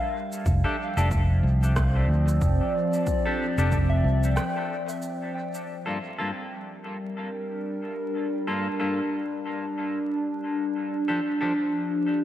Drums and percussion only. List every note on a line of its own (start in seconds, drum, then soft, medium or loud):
0.33 shaker soft
0.46 kick medium
0.46 shaker soft
0.98 shaker soft
1.11 kick medium
1.11 shaker soft
1.63 shaker soft
1.76 kick medium
1.76 cross-stick medium
1.76 shaker soft
2.28 shaker soft
2.42 kick medium
2.42 shaker soft
2.93 shaker medium
3.07 kick medium
3.07 shaker soft
3.58 shaker soft
3.72 kick medium
3.72 shaker soft
4.24 shaker soft
4.37 cross-stick medium
4.37 shaker soft
4.89 shaker soft
5.02 shaker soft
5.54 shaker medium